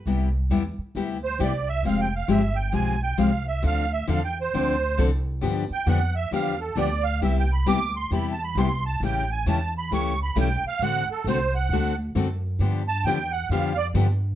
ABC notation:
X:1
M:4/4
L:1/8
Q:"Swing" 1/4=134
K:C
V:1 name="Accordion"
z4 z c d e | (3f g f e g _a g f e | f e (3f g c- c2 z2 | z g ^f e =f A d f |
(3e g b d' c' (3b a b c' a | g _a =a b ^c' b g f | ^f A c f2 z3 | z a g ^f =f d z2 |]
V:2 name="Steel-string acoustic guitar"
[C,G,B,EG] z [C,G,B,EG] z [C,G,B,EG] z [C,G,B,EG] z | [F,_A,CG] z [F,A,CG] z [F,A,CG] z [F,A,CG] z | [D,F,CDA] z [D,F,CDA] z [D,F,CDA] z [D,F,CDA] z | [D,F,B,DG] z [D,F,B,DG] z [D,F,B,DG] z [D,F,B,DG] z |
[C,G,B,EG] z [C,G,B,EG] z [C,G,B,EG] z [C,G,B,EG] z | [^C,E,A,^CG] z [C,E,A,CG] z [C,E,A,CG] z [C,E,A,CG] z | [D,A,C^FA] z [D,A,CFA] z [D,A,CFA] z [D,A,CFA] z | [D,F,B,DG] z [D,F,B,DG] z [D,F,B,DG] z [D,F,B,DG] z |]
V:3 name="Upright bass" clef=bass
C,,2 E,, z D,,2 C,,2 | F,,,2 G,,,2 B,,,2 C,,2 | D,,2 E,,2 D,,2 C,,2 | G,, z F,,2 E,,2 D,,2 |
C,,2 D,,2 E,,2 C,,2 | A,,,2 E,,2 ^C,,2 B,,, z | A,,, z C,,2 D,,2 ^F,,2 | G,,2 E,,2 F,,2 G,,2 |]